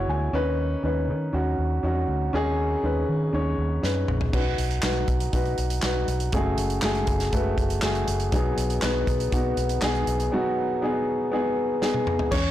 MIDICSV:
0, 0, Header, 1, 4, 480
1, 0, Start_track
1, 0, Tempo, 499168
1, 322, Time_signature, 4, 2, 24, 8
1, 12029, End_track
2, 0, Start_track
2, 0, Title_t, "Upright piano"
2, 0, Program_c, 0, 0
2, 0, Control_c, 0, 64, 127
2, 0, Note_on_c, 0, 47, 62
2, 0, Note_on_c, 0, 64, 73
2, 0, Note_on_c, 0, 66, 60
2, 0, Note_on_c, 0, 71, 71
2, 0, Note_on_c, 0, 73, 76
2, 0, Note_on_c, 0, 76, 50
2, 0, Note_on_c, 0, 78, 55
2, 89, Note_on_c, 0, 80, 57
2, 177, Note_off_c, 0, 64, 0
2, 181, Note_off_c, 0, 66, 0
2, 185, Note_off_c, 0, 73, 0
2, 309, Note_off_c, 0, 80, 0
2, 322, Note_on_c, 0, 61, 95
2, 328, Note_on_c, 0, 51, 63
2, 328, Note_on_c, 0, 63, 87
2, 333, Control_c, 0, 64, 0
2, 334, Note_off_c, 0, 47, 0
2, 335, Note_off_c, 0, 71, 0
2, 335, Note_on_c, 0, 71, 104
2, 336, Note_off_c, 0, 78, 0
2, 337, Note_off_c, 0, 76, 0
2, 496, Control_c, 0, 64, 127
2, 659, Note_off_c, 0, 61, 0
2, 662, Note_off_c, 0, 63, 0
2, 666, Note_off_c, 0, 71, 0
2, 799, Note_on_c, 0, 61, 67
2, 807, Note_on_c, 0, 63, 62
2, 816, Note_on_c, 0, 71, 77
2, 1008, Note_off_c, 0, 51, 0
2, 1138, Note_off_c, 0, 61, 0
2, 1142, Note_off_c, 0, 63, 0
2, 1146, Note_off_c, 0, 71, 0
2, 1278, Note_on_c, 0, 61, 68
2, 1284, Note_on_c, 0, 63, 58
2, 1292, Note_on_c, 0, 66, 79
2, 1618, Note_off_c, 0, 61, 0
2, 1621, Note_off_c, 0, 63, 0
2, 1625, Note_off_c, 0, 66, 0
2, 1760, Note_on_c, 0, 61, 71
2, 1766, Note_on_c, 0, 63, 63
2, 1774, Note_on_c, 0, 66, 80
2, 2099, Note_off_c, 0, 61, 0
2, 2102, Note_off_c, 0, 63, 0
2, 2106, Note_off_c, 0, 66, 0
2, 2241, Note_on_c, 0, 61, 89
2, 2249, Note_on_c, 0, 51, 65
2, 2252, Note_on_c, 0, 63, 84
2, 2260, Note_on_c, 0, 68, 102
2, 2580, Note_off_c, 0, 61, 0
2, 2586, Note_off_c, 0, 63, 0
2, 2589, Note_off_c, 0, 68, 0
2, 2727, Note_on_c, 0, 61, 65
2, 2731, Note_on_c, 0, 63, 64
2, 2739, Note_on_c, 0, 71, 76
2, 2929, Note_off_c, 0, 51, 0
2, 3063, Note_off_c, 0, 61, 0
2, 3065, Note_off_c, 0, 63, 0
2, 3069, Note_off_c, 0, 71, 0
2, 3200, Note_on_c, 0, 61, 72
2, 3208, Note_on_c, 0, 63, 64
2, 3216, Note_on_c, 0, 73, 77
2, 3540, Note_off_c, 0, 61, 0
2, 3544, Note_off_c, 0, 63, 0
2, 3548, Note_off_c, 0, 73, 0
2, 3681, Note_on_c, 0, 61, 71
2, 3684, Note_on_c, 0, 63, 64
2, 3693, Note_on_c, 0, 71, 77
2, 4021, Note_off_c, 0, 61, 0
2, 4022, Note_off_c, 0, 63, 0
2, 4027, Note_off_c, 0, 71, 0
2, 4158, Note_on_c, 0, 61, 56
2, 4166, Note_on_c, 0, 66, 73
2, 4173, Note_on_c, 0, 71, 82
2, 4179, Control_c, 0, 64, 0
2, 4215, Note_on_c, 0, 63, 75
2, 4220, Note_off_c, 0, 61, 0
2, 4323, Control_c, 0, 64, 127
2, 4503, Note_off_c, 0, 66, 0
2, 4507, Note_off_c, 0, 71, 0
2, 4528, Note_off_c, 0, 63, 0
2, 4644, Note_on_c, 0, 63, 72
2, 4653, Note_on_c, 0, 66, 62
2, 4662, Note_on_c, 0, 71, 76
2, 4983, Note_off_c, 0, 63, 0
2, 4987, Note_off_c, 0, 66, 0
2, 4991, Note_off_c, 0, 71, 0
2, 5125, Note_on_c, 0, 63, 72
2, 5133, Note_on_c, 0, 66, 66
2, 5142, Note_on_c, 0, 71, 77
2, 5463, Note_off_c, 0, 63, 0
2, 5467, Note_off_c, 0, 66, 0
2, 5472, Note_off_c, 0, 71, 0
2, 5610, Note_on_c, 0, 63, 75
2, 5615, Note_on_c, 0, 66, 70
2, 5622, Note_on_c, 0, 71, 80
2, 5946, Note_off_c, 0, 63, 0
2, 5948, Note_off_c, 0, 66, 0
2, 5952, Note_off_c, 0, 71, 0
2, 6088, Note_on_c, 0, 57, 76
2, 6093, Note_on_c, 0, 49, 68
2, 6094, Note_on_c, 0, 66, 70
2, 6101, Control_c, 0, 64, 0
2, 6103, Note_on_c, 0, 68, 84
2, 6269, Control_c, 0, 64, 127
2, 6425, Note_off_c, 0, 57, 0
2, 6428, Note_off_c, 0, 66, 0
2, 6432, Note_off_c, 0, 68, 0
2, 6566, Note_on_c, 0, 57, 72
2, 6572, Note_on_c, 0, 66, 69
2, 6581, Note_on_c, 0, 68, 84
2, 6772, Note_off_c, 0, 49, 0
2, 6904, Note_off_c, 0, 57, 0
2, 6907, Note_off_c, 0, 66, 0
2, 6911, Note_off_c, 0, 68, 0
2, 7048, Note_on_c, 0, 57, 80
2, 7056, Note_on_c, 0, 66, 62
2, 7065, Note_on_c, 0, 71, 82
2, 7385, Note_off_c, 0, 57, 0
2, 7389, Note_off_c, 0, 66, 0
2, 7393, Note_off_c, 0, 71, 0
2, 7525, Note_on_c, 0, 57, 71
2, 7532, Note_on_c, 0, 66, 67
2, 7538, Note_on_c, 0, 68, 83
2, 7863, Note_off_c, 0, 57, 0
2, 7866, Note_off_c, 0, 66, 0
2, 7869, Note_off_c, 0, 68, 0
2, 8003, Note_on_c, 0, 59, 81
2, 8008, Note_on_c, 0, 63, 75
2, 8010, Note_on_c, 0, 47, 70
2, 8010, Note_on_c, 0, 54, 67
2, 8018, Note_on_c, 0, 68, 81
2, 8020, Control_c, 0, 64, 0
2, 8167, Control_c, 0, 64, 127
2, 8342, Note_off_c, 0, 59, 0
2, 8345, Note_off_c, 0, 63, 0
2, 8349, Note_off_c, 0, 68, 0
2, 8482, Note_on_c, 0, 59, 80
2, 8492, Note_on_c, 0, 63, 68
2, 8498, Note_on_c, 0, 71, 89
2, 8690, Note_off_c, 0, 47, 0
2, 8690, Note_off_c, 0, 54, 0
2, 8821, Note_off_c, 0, 59, 0
2, 8826, Note_off_c, 0, 63, 0
2, 8829, Note_off_c, 0, 71, 0
2, 8961, Note_on_c, 0, 59, 73
2, 8969, Note_on_c, 0, 63, 75
2, 8976, Note_on_c, 0, 66, 81
2, 9301, Note_off_c, 0, 59, 0
2, 9305, Note_off_c, 0, 63, 0
2, 9308, Note_off_c, 0, 66, 0
2, 9444, Note_on_c, 0, 59, 74
2, 9450, Note_on_c, 0, 63, 69
2, 9457, Note_on_c, 0, 68, 91
2, 9782, Note_off_c, 0, 59, 0
2, 9785, Note_off_c, 0, 63, 0
2, 9789, Note_off_c, 0, 68, 0
2, 9923, Note_on_c, 0, 59, 81
2, 9932, Note_on_c, 0, 63, 78
2, 9933, Note_on_c, 0, 54, 65
2, 9934, Note_on_c, 0, 47, 73
2, 9939, Note_on_c, 0, 66, 89
2, 10261, Note_off_c, 0, 59, 0
2, 10266, Note_off_c, 0, 63, 0
2, 10270, Note_off_c, 0, 66, 0
2, 10405, Note_on_c, 0, 59, 76
2, 10411, Note_on_c, 0, 63, 72
2, 10417, Note_on_c, 0, 68, 77
2, 10611, Note_off_c, 0, 47, 0
2, 10611, Note_off_c, 0, 54, 0
2, 10742, Note_off_c, 0, 59, 0
2, 10745, Note_off_c, 0, 63, 0
2, 10748, Note_off_c, 0, 68, 0
2, 10880, Note_on_c, 0, 59, 78
2, 10890, Note_on_c, 0, 63, 67
2, 10895, Note_on_c, 0, 68, 81
2, 11219, Note_off_c, 0, 59, 0
2, 11224, Note_off_c, 0, 63, 0
2, 11227, Note_off_c, 0, 68, 0
2, 11362, Note_on_c, 0, 59, 71
2, 11370, Note_on_c, 0, 63, 72
2, 11377, Note_on_c, 0, 68, 91
2, 11700, Note_off_c, 0, 59, 0
2, 11704, Note_off_c, 0, 63, 0
2, 11707, Note_off_c, 0, 68, 0
2, 11839, Note_on_c, 0, 73, 108
2, 11856, Note_on_c, 0, 61, 84
2, 11857, Control_c, 0, 64, 0
2, 12029, Note_off_c, 0, 61, 0
2, 12029, Note_off_c, 0, 73, 0
2, 12029, End_track
3, 0, Start_track
3, 0, Title_t, "Fingered electric bass"
3, 0, Program_c, 1, 33
3, 80, Note_on_c, 1, 38, 79
3, 277, Note_off_c, 1, 38, 0
3, 319, Note_on_c, 1, 39, 87
3, 714, Note_off_c, 1, 39, 0
3, 803, Note_on_c, 1, 39, 75
3, 1046, Note_on_c, 1, 51, 76
3, 1061, Note_off_c, 1, 39, 0
3, 1242, Note_off_c, 1, 51, 0
3, 1282, Note_on_c, 1, 39, 82
3, 1480, Note_off_c, 1, 39, 0
3, 1523, Note_on_c, 1, 39, 75
3, 1720, Note_off_c, 1, 39, 0
3, 1763, Note_on_c, 1, 40, 77
3, 1961, Note_off_c, 1, 40, 0
3, 2002, Note_on_c, 1, 38, 80
3, 2200, Note_off_c, 1, 38, 0
3, 2245, Note_on_c, 1, 39, 84
3, 2639, Note_off_c, 1, 39, 0
3, 2726, Note_on_c, 1, 39, 75
3, 2922, Note_off_c, 1, 39, 0
3, 2970, Note_on_c, 1, 51, 78
3, 3165, Note_off_c, 1, 51, 0
3, 3205, Note_on_c, 1, 39, 92
3, 3402, Note_off_c, 1, 39, 0
3, 3446, Note_on_c, 1, 39, 74
3, 3643, Note_off_c, 1, 39, 0
3, 3687, Note_on_c, 1, 42, 68
3, 3884, Note_off_c, 1, 42, 0
3, 3926, Note_on_c, 1, 34, 73
3, 4123, Note_off_c, 1, 34, 0
3, 4167, Note_on_c, 1, 35, 84
3, 4364, Note_off_c, 1, 35, 0
3, 4405, Note_on_c, 1, 35, 76
3, 4603, Note_off_c, 1, 35, 0
3, 4644, Note_on_c, 1, 35, 72
3, 4842, Note_off_c, 1, 35, 0
3, 4886, Note_on_c, 1, 35, 70
3, 5083, Note_off_c, 1, 35, 0
3, 5128, Note_on_c, 1, 35, 85
3, 5325, Note_off_c, 1, 35, 0
3, 5369, Note_on_c, 1, 35, 86
3, 5566, Note_off_c, 1, 35, 0
3, 5608, Note_on_c, 1, 35, 78
3, 5805, Note_off_c, 1, 35, 0
3, 5846, Note_on_c, 1, 35, 79
3, 6044, Note_off_c, 1, 35, 0
3, 6084, Note_on_c, 1, 30, 83
3, 6283, Note_off_c, 1, 30, 0
3, 6325, Note_on_c, 1, 30, 81
3, 6523, Note_off_c, 1, 30, 0
3, 6569, Note_on_c, 1, 30, 74
3, 6765, Note_off_c, 1, 30, 0
3, 6804, Note_on_c, 1, 30, 86
3, 7002, Note_off_c, 1, 30, 0
3, 7046, Note_on_c, 1, 30, 100
3, 7243, Note_off_c, 1, 30, 0
3, 7287, Note_on_c, 1, 30, 81
3, 7484, Note_off_c, 1, 30, 0
3, 7527, Note_on_c, 1, 30, 86
3, 7724, Note_off_c, 1, 30, 0
3, 7767, Note_on_c, 1, 30, 84
3, 7964, Note_off_c, 1, 30, 0
3, 8006, Note_on_c, 1, 35, 88
3, 8203, Note_off_c, 1, 35, 0
3, 8248, Note_on_c, 1, 35, 84
3, 8445, Note_off_c, 1, 35, 0
3, 8488, Note_on_c, 1, 35, 78
3, 8684, Note_off_c, 1, 35, 0
3, 8724, Note_on_c, 1, 35, 86
3, 8922, Note_off_c, 1, 35, 0
3, 8967, Note_on_c, 1, 35, 100
3, 9164, Note_off_c, 1, 35, 0
3, 9206, Note_on_c, 1, 35, 87
3, 9403, Note_off_c, 1, 35, 0
3, 9447, Note_on_c, 1, 35, 82
3, 9644, Note_off_c, 1, 35, 0
3, 9686, Note_on_c, 1, 35, 87
3, 9883, Note_off_c, 1, 35, 0
3, 11843, Note_on_c, 1, 40, 92
3, 12029, Note_off_c, 1, 40, 0
3, 12029, End_track
4, 0, Start_track
4, 0, Title_t, "Drums"
4, 3688, Note_on_c, 9, 38, 46
4, 3784, Note_off_c, 9, 38, 0
4, 3927, Note_on_c, 9, 45, 71
4, 4023, Note_off_c, 9, 45, 0
4, 4046, Note_on_c, 9, 43, 74
4, 4142, Note_off_c, 9, 43, 0
4, 4168, Note_on_c, 9, 36, 97
4, 4169, Note_on_c, 9, 49, 80
4, 4264, Note_off_c, 9, 36, 0
4, 4265, Note_off_c, 9, 49, 0
4, 4407, Note_on_c, 9, 42, 75
4, 4504, Note_off_c, 9, 42, 0
4, 4525, Note_on_c, 9, 42, 38
4, 4621, Note_off_c, 9, 42, 0
4, 4640, Note_on_c, 9, 39, 72
4, 4645, Note_on_c, 9, 38, 102
4, 4736, Note_off_c, 9, 39, 0
4, 4741, Note_off_c, 9, 38, 0
4, 4883, Note_on_c, 9, 42, 58
4, 4885, Note_on_c, 9, 36, 75
4, 4979, Note_off_c, 9, 42, 0
4, 4981, Note_off_c, 9, 36, 0
4, 5004, Note_on_c, 9, 42, 50
4, 5101, Note_off_c, 9, 42, 0
4, 5125, Note_on_c, 9, 42, 70
4, 5128, Note_on_c, 9, 36, 80
4, 5222, Note_off_c, 9, 42, 0
4, 5224, Note_off_c, 9, 36, 0
4, 5246, Note_on_c, 9, 42, 27
4, 5342, Note_off_c, 9, 42, 0
4, 5363, Note_on_c, 9, 42, 51
4, 5459, Note_off_c, 9, 42, 0
4, 5484, Note_on_c, 9, 42, 50
4, 5580, Note_off_c, 9, 42, 0
4, 5598, Note_on_c, 9, 39, 72
4, 5604, Note_on_c, 9, 38, 88
4, 5694, Note_off_c, 9, 39, 0
4, 5700, Note_off_c, 9, 38, 0
4, 5847, Note_on_c, 9, 42, 55
4, 5943, Note_off_c, 9, 42, 0
4, 5962, Note_on_c, 9, 42, 46
4, 6059, Note_off_c, 9, 42, 0
4, 6082, Note_on_c, 9, 42, 74
4, 6086, Note_on_c, 9, 36, 112
4, 6178, Note_off_c, 9, 42, 0
4, 6183, Note_off_c, 9, 36, 0
4, 6325, Note_on_c, 9, 42, 74
4, 6421, Note_off_c, 9, 42, 0
4, 6442, Note_on_c, 9, 42, 38
4, 6538, Note_off_c, 9, 42, 0
4, 6557, Note_on_c, 9, 39, 79
4, 6563, Note_on_c, 9, 38, 99
4, 6653, Note_off_c, 9, 39, 0
4, 6659, Note_off_c, 9, 38, 0
4, 6683, Note_on_c, 9, 42, 31
4, 6779, Note_off_c, 9, 42, 0
4, 6799, Note_on_c, 9, 42, 69
4, 6804, Note_on_c, 9, 36, 70
4, 6895, Note_off_c, 9, 42, 0
4, 6900, Note_off_c, 9, 36, 0
4, 6922, Note_on_c, 9, 38, 30
4, 6924, Note_on_c, 9, 42, 50
4, 7018, Note_off_c, 9, 38, 0
4, 7020, Note_off_c, 9, 42, 0
4, 7045, Note_on_c, 9, 42, 72
4, 7048, Note_on_c, 9, 36, 77
4, 7141, Note_off_c, 9, 42, 0
4, 7144, Note_off_c, 9, 36, 0
4, 7286, Note_on_c, 9, 36, 72
4, 7287, Note_on_c, 9, 42, 50
4, 7382, Note_off_c, 9, 36, 0
4, 7383, Note_off_c, 9, 42, 0
4, 7405, Note_on_c, 9, 42, 50
4, 7501, Note_off_c, 9, 42, 0
4, 7519, Note_on_c, 9, 39, 79
4, 7524, Note_on_c, 9, 38, 96
4, 7615, Note_off_c, 9, 39, 0
4, 7620, Note_off_c, 9, 38, 0
4, 7646, Note_on_c, 9, 42, 29
4, 7742, Note_off_c, 9, 42, 0
4, 7767, Note_on_c, 9, 42, 62
4, 7863, Note_off_c, 9, 42, 0
4, 7881, Note_on_c, 9, 42, 48
4, 7978, Note_off_c, 9, 42, 0
4, 8003, Note_on_c, 9, 42, 83
4, 8005, Note_on_c, 9, 36, 104
4, 8099, Note_off_c, 9, 42, 0
4, 8101, Note_off_c, 9, 36, 0
4, 8248, Note_on_c, 9, 42, 73
4, 8344, Note_off_c, 9, 42, 0
4, 8365, Note_on_c, 9, 42, 39
4, 8461, Note_off_c, 9, 42, 0
4, 8480, Note_on_c, 9, 39, 75
4, 8486, Note_on_c, 9, 38, 104
4, 8577, Note_off_c, 9, 39, 0
4, 8582, Note_off_c, 9, 38, 0
4, 8725, Note_on_c, 9, 36, 83
4, 8725, Note_on_c, 9, 42, 64
4, 8821, Note_off_c, 9, 36, 0
4, 8822, Note_off_c, 9, 42, 0
4, 8848, Note_on_c, 9, 42, 48
4, 8945, Note_off_c, 9, 42, 0
4, 8966, Note_on_c, 9, 42, 79
4, 8967, Note_on_c, 9, 36, 89
4, 9062, Note_off_c, 9, 42, 0
4, 9063, Note_off_c, 9, 36, 0
4, 9204, Note_on_c, 9, 42, 51
4, 9301, Note_off_c, 9, 42, 0
4, 9321, Note_on_c, 9, 42, 48
4, 9418, Note_off_c, 9, 42, 0
4, 9439, Note_on_c, 9, 39, 75
4, 9445, Note_on_c, 9, 38, 97
4, 9536, Note_off_c, 9, 39, 0
4, 9541, Note_off_c, 9, 38, 0
4, 9565, Note_on_c, 9, 42, 30
4, 9661, Note_off_c, 9, 42, 0
4, 9686, Note_on_c, 9, 42, 58
4, 9783, Note_off_c, 9, 42, 0
4, 9806, Note_on_c, 9, 42, 42
4, 9902, Note_off_c, 9, 42, 0
4, 11366, Note_on_c, 9, 38, 52
4, 11462, Note_off_c, 9, 38, 0
4, 11484, Note_on_c, 9, 48, 56
4, 11581, Note_off_c, 9, 48, 0
4, 11606, Note_on_c, 9, 45, 72
4, 11702, Note_off_c, 9, 45, 0
4, 11725, Note_on_c, 9, 43, 79
4, 11821, Note_off_c, 9, 43, 0
4, 11843, Note_on_c, 9, 49, 97
4, 11845, Note_on_c, 9, 36, 110
4, 11939, Note_off_c, 9, 49, 0
4, 11941, Note_off_c, 9, 36, 0
4, 12029, End_track
0, 0, End_of_file